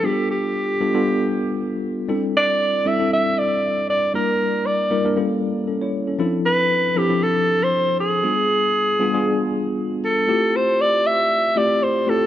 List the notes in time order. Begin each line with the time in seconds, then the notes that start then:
0.03 G3 B3 D4 F4 G4 G#4
0.10 A4
0.31 G4
0.80 G3 B3 D4 F4 A4
0.94 G3 B3 D4 F4 A4
2.08 G3 C4 D4 E4 A4
2.37 D5
2.85 G3 C4 D4 E4 A4 E5
2.99 G3 C4 D4 E4 A4
3.13 E5
3.39 D5
3.90 D5
4.14 G3 A#3 D4 E4 A#4
4.66 D5
4.90 G3 A#3 D4 E4 A#4
5.04 G3 A#3 D4 E4 A#4
5.16 G3 A#3 C#4 E4 A4
5.67 C#4 A4
5.82 E4 C#5
6.07 C#4 A4
6.19 F3 C4 D4 E4 A4
6.46 B4
6.95 F3 C4 D4 E4 G4 A4
7.09 F3 C4 D4 E4 A4
7.23 A4
7.64 C5
8.00 G#4
8.23 G3 B3 D4 F4 G#4
8.99 G3 B3 D4 F4 G#4
9.13 G3 B3 D4 F4 G#4
10.04 A4
10.28 A3 C4 E4 F4 G4
10.56 C5
10.81 D5
11.07 E5
11.56 A3 C4 E4 F4 G4 D5
11.83 C5
12.07 A3 C4 E4 F4 G4 A4